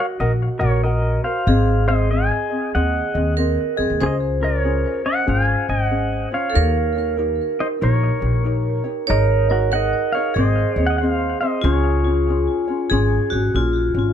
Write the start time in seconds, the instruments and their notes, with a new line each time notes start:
Already playing: ukulele F#4 A#4, vibraphone F#4
0.20 upright bass A#1, ukulele F#4 A#4 D#5 F#5, pedal steel guitar A#4 D#5
0.59 upright bass A#1, ukulele F#4 A#4 F#5, pedal steel guitar A#4 C#5
0.83 ukulele F#4 A#4 D#5 F#5, pedal steel guitar A#4 D#5
1.24 ukulele F#4 A#4, pedal steel guitar C5 F5
1.47 upright bass G#1, ukulele C4 G#4 C5 D#5, vibraphone G#4
1.87 ukulele C4 G#4 D#5, pedal steel guitar C5 D#5
2.10 ukulele C4 G#4 C5 D#5, pedal steel guitar D#5 G#5
2.50 ukulele C4 G#4 D#5
2.75 upright bass D#2, ukulele C4 G#4 C5 D#5, pedal steel guitar D#5 F#5
3.14 upright bass D#2, ukulele C4 G#4 D#5
3.37 ukulele C4 G#4 C5 D#5, vibraphone A#4
3.76 upright bass F2, ukulele C4 G#4 D#5, vibraphone G#4
3.90 upright bass D#2
4.00 upright bass C#2, ukulele C#4 F4 G#4, pedal steel guitar G#4, vibraphone C5
4.06 pedal steel guitar D#5
4.40 ukulele C#4 F4, pedal steel guitar A#4
4.44 pedal steel guitar C#5
4.64 ukulele C#4 F4 G#4
5.05 ukulele C#4, pedal steel guitar D#5 F#5
5.26 upright bass G#1, ukulele C#4 F4 G#4, pedal steel guitar F5 G#5
5.69 upright bass G#1, ukulele C#4, pedal steel guitar D#5 F#5
5.91 ukulele C#4 G#4
6.31 ukulele C#4 F4 C#5, pedal steel guitar C#5 F5
6.50 vibraphone A4
6.54 upright bass D#2, ukulele D#4 G4 A#4 C#5, vibraphone A#4
6.95 ukulele D#4 G4 C#5
7.17 ukulele D#4 G4 A#4 C#5
7.59 ukulele D#4 G4, pedal steel guitar C5 D#5
7.81 upright bass A#1, ukulele D#4 G4 A#4 C#5, pedal steel guitar A#4 C#5
8.20 upright bass A#1, ukulele D#4 G4 C#5
8.44 ukulele D#4 G4 A#4 C#5
8.84 ukulele D#4 G4 C#5
9.07 upright bass G#1, ukulele D#4 G#4 C#5 D#5, pedal steel guitar D#4 A#4, vibraphone C#5
9.49 ukulele D#4 G#4 D#5, pedal steel guitar F#4 A#4
9.72 ukulele D#4 G#4 C#5 D#5, vibraphone A#4, pedal steel guitar D#5 F#5
10.12 ukulele D#4 G#4 D#5, pedal steel guitar C#5 F5
10.34 upright bass G#1, ukulele C4 C5, vibraphone G#4, pedal steel guitar D#5
10.38 ukulele G#4 D#5, pedal steel guitar C5
10.76 upright bass D#2, ukulele C4 G#4 D#5
10.87 pedal steel guitar D#5 F#5
10.98 ukulele C4 C5, pedal steel guitar C5 F#5
11.03 ukulele G#4 D#5
11.09 pedal steel guitar F5
11.41 ukulele C4 G#4 D#5, pedal steel guitar C5 D#5
11.61 upright bass C#2, ukulele C#4 F4 G#4 C#5, vibraphone F4, pedal steel guitar C#5
11.67 pedal steel guitar G#4
12.04 ukulele C#4 F4 C#5
12.29 ukulele C#4 F4 G#4 C#5
12.67 ukulele C#4 F4 C#5
12.90 upright bass G#1, ukulele C#4 F4 G#4 C#5, vibraphone G#4
13.30 upright bass G#1, vibraphone F#4, ukulele C#5
13.35 ukulele C#4
13.54 upright bass A#1, ukulele C#4 F4 G#4 C#5, vibraphone F4
13.94 upright bass G#1, ukulele C#4 F4 C#5